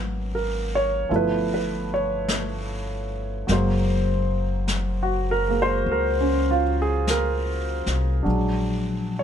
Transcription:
Already playing: upright bass G#1, grand piano F#3 A#3 B3 C#4
0.35 grand piano A#4
0.75 grand piano C#5
1.09 upright bass G1, grand piano F3 A3 B3 E4, brush sweep
1.16 grand piano B4
1.54 grand piano B4
1.94 grand piano C#5
2.28 brush sweep, snare, hi-hat pedal
3.47 upright bass F#1, grand piano F#3 G#3 A#3, brush sweep, snare
3.52 grand piano C5
4.68 brush sweep, snare, hi-hat pedal
5.03 grand piano F#4
5.31 grand piano A#4
5.48 grand piano G#3 A#3
5.62 grand piano C5
5.86 upright bass C#2, brush sweep
5.92 grand piano A#4
6.20 grand piano C#4
6.51 grand piano F4
6.82 grand piano G#4
7.07 grand piano A#4, brush sweep, snare, hi-hat pedal
7.86 upright bass C2, snare
8.23 upright bass A#1, grand piano F#3 G#3 D4, brush sweep
9.19 grand piano C#5

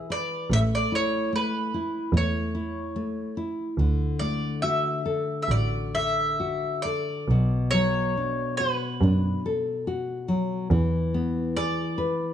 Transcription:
Already playing: nylon-string guitar E3, mandolin E5
0.10 nylon-string guitar B4, mandolin D5
0.50 double bass A1, nylon-string guitar A3, mandolin E5
0.75 mandolin D5
0.92 nylon-string guitar E4, mandolin C#5
1.33 nylon-string guitar A3, mandolin B4
1.74 nylon-string guitar E4
2.12 double bass E2, nylon-string guitar A3
2.17 mandolin C#5
2.55 nylon-string guitar E4
2.96 nylon-string guitar A3
3.37 nylon-string guitar E4
3.78 double bass D2, nylon-string guitar D3
4.19 nylon-string guitar A3, mandolin D5
4.62 nylon-string guitar F#4, mandolin E5
5.06 nylon-string guitar A4
5.42 mandolin E5
5.48 double bass A1, nylon-string guitar F#4, mandolin D5
5.95 nylon-string guitar A4, mandolin E5
6.40 nylon-string guitar F#4
6.82 nylon-string guitar A4, mandolin D5
7.28 double bass B1, nylon-string guitar B2
7.71 nylon-string guitar F#3, mandolin C#5
8.17 nylon-string guitar D4
8.57 nylon-string guitar F#4, mandolin B4
9.01 double bass F#2, nylon-string guitar D4
9.46 nylon-string guitar A4
9.87 nylon-string guitar F#4
10.28 nylon-string guitar F#3
10.70 double bass E2, nylon-string guitar E3
11.14 nylon-string guitar B3
11.57 nylon-string guitar G#4, mandolin D5
11.98 nylon-string guitar B4

